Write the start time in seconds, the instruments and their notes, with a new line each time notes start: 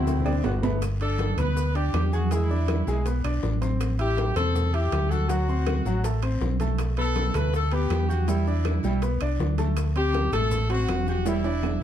Already playing: fingered electric bass D2, trombone section C4, horn section E4, grand piano F#4 F#5 F#6
0.07 cowbell, high bongo, low conga, low agogo, long guiro, maracas
0.19 low conga
0.25 grand piano D4 D5 D6, high bongo, low timbale, low agogo, claves, maracas
0.44 fingered electric bass G1, trombone section B3, grand piano F#4 F#5 F#6, cowbell, low conga, low timbale, short guiro, maracas
0.56 low conga
0.63 trombone section A3, grand piano B3 B4 B5, low bongo, low timbale, short guiro, maracas
0.69 low conga
0.81 high bongo, high conga, high timbale, long guiro, claves, maracas
1.00 grand piano D4 D5 D6, horn section A4, high conga, high timbale, maracas
1.18 high bongo, high conga, high timbale, short guiro, maracas
1.37 fingered electric bass D2, grand piano B3 B4 B5, horn section B4, low conga, high timbale, short guiro, claves, maracas
1.56 high bongo, high conga, long guiro, maracas
1.74 grand piano D4 D5 D6, horn section G4, high conga, high timbale, maracas
1.93 fingered electric bass E2, high bongo, low bongo, high conga, high timbale, low timbale, short guiro, claves, maracas
2.12 horn section F#4, grand piano G#4 G#5 G#6, high conga, short guiro, maracas
2.31 grand piano G#3 G#4 G#5, horn section E4, high bongo, high conga, high timbale, long guiro, maracas
2.49 grand piano D4 D5 D6, high bongo, high conga, maracas
2.68 high bongo, high conga, high timbale, short guiro, claves, maracas
2.87 fingered electric bass B1, grand piano G#3 G#4 G#5, high bongo, short guiro, maracas
3.06 grand piano B3 B4 B5, high bongo, high conga, high timbale, long guiro, maracas
3.24 fingered electric bass B1, grand piano D4 D5 D6, high bongo, high conga, high timbale, claves, maracas
3.43 fingered electric bass A1, high bongo, low bongo, high conga, short guiro, maracas
3.61 grand piano C4 C5 C6, high conga, high timbale, short guiro, maracas
3.80 high bongo, high conga, high timbale, long guiro, claves, maracas
3.99 grand piano E4 E5 E6, horn section G4, high conga, high timbale, maracas
4.17 high bongo, high conga, high timbale, short guiro, maracas
4.35 fingered electric bass E2, grand piano C4 C5 C6, horn section A4, low conga, high timbale, short guiro, claves, maracas
4.55 high bongo, high conga, low conga, long guiro, maracas
4.73 grand piano E4 E5 E6, horn section G4, high conga, high timbale, maracas
4.92 fingered electric bass D2, high bongo, low bongo, high conga, high timbale, short guiro, claves, maracas
5.10 grand piano F#4 F#5 F#6, horn section A4, high conga, short guiro, maracas
5.28 grand piano F#3 F#4 F#5, horn section F#4, high bongo, high conga, high timbale, long guiro, maracas
5.49 grand piano C4 C5 C6, high bongo, maracas
5.67 high bongo, high conga, high timbale, short guiro, claves, maracas
5.85 fingered electric bass A1, grand piano F#3 F#4 F#5, high bongo, short guiro, maracas
6.04 grand piano A3 A4 A5, high bongo, high conga, high timbale, long guiro, maracas
6.23 grand piano C4 C5 C6, high bongo, high conga, high timbale, claves, maracas
6.41 fingered electric bass B1, high bongo, low bongo, high conga, short guiro, maracas
6.60 grand piano A3 A4 A5, high conga, high timbale, short guiro, maracas
6.78 high bongo, high conga, high timbale, long guiro, claves, maracas
6.97 grand piano B3 B4 B5, horn section A4, high conga, high timbale, maracas
7.16 high bongo, high conga, high timbale, short guiro, maracas
7.34 fingered electric bass D2, grand piano A3 A4 A5, horn section B4, low conga, high timbale, short guiro, claves, maracas
7.53 horn section A4, high bongo, high conga, long guiro, maracas
7.71 grand piano B3 B4 B5, horn section G4, high conga, high timbale, maracas
7.90 fingered electric bass E2, high bongo, low bongo, high conga, high timbale, short guiro, claves, maracas
8.09 horn section F#4, grand piano G4 G5 G6, high conga, short guiro, maracas
8.27 grand piano G3 G4 G5, horn section E4, high bongo, high conga, high timbale, long guiro, maracas
8.46 grand piano D4 D5 D6, high bongo, high conga, maracas
8.65 high bongo, high conga, high timbale, short guiro, claves, maracas
8.83 fingered electric bass B1, grand piano G3 G4 G5, high bongo, short guiro, maracas
9.02 grand piano B3 B4 B5, high bongo, high conga, high timbale, long guiro, maracas
9.21 fingered electric bass C2, grand piano D4 D5 D6, high bongo, high timbale, claves, maracas
9.39 fingered electric bass D2, high bongo, low bongo, high conga, short guiro, maracas
9.58 grand piano A3 A4 A5, high conga, high timbale, short guiro, maracas
9.77 high bongo, high timbale, long guiro, claves, maracas
9.95 grand piano C4 C5 C6, horn section G4, high conga, high timbale, maracas
10.13 high bongo, high conga, high timbale, short guiro, maracas
10.32 fingered electric bass A1, grand piano A3 A4 A5, horn section A4, low conga, high timbale, short guiro, claves, maracas
10.51 high bongo, high conga, low conga, long guiro, maracas
10.70 grand piano C4 C5 C6, horn section F#4, high conga, high timbale, maracas
10.88 fingered electric bass E1, high bongo, low bongo, high conga, high timbale, short guiro, claves, maracas
11.07 horn section F#4, grand piano G4 G5 G6, high conga, short guiro, maracas
11.25 grand piano G3 G4 G5, horn section E4, high bongo, high conga, high timbale, long guiro, maracas
11.44 grand piano D4 D5 D6, high conga, high timbale, maracas
11.63 high bongo, high conga, low timbale, short guiro, claves, maracas